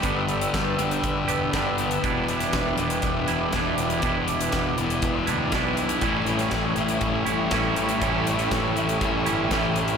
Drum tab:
HH |x-xxx-xxx-x-x-xx|x-xxx-xxx-x-x-xx|x-xxx-xxx-x-x-xx|x-xxx-xxx-x-x-xx|
SD |----o-------o---|---oo-------o---|----o-------o---|---oo-------o---|
BD |o---o---o---o---|o---o---o---o---|o---o---o---o---|o---o---o---o---|

HH |x-xxx-xxx-x-x-xx|
SD |----o-------o---|
BD |o---o---o---o---|